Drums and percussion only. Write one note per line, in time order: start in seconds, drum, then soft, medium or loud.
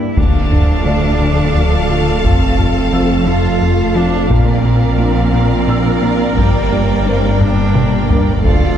0.17 taiko medium
0.52 taiko low-mid soft
2.24 taiko medium
2.59 taiko low-mid soft
4.31 taiko medium
6.38 taiko medium
7.41 taiko low-mid medium
7.75 taiko mid medium
8.10 taiko low medium
8.44 taiko medium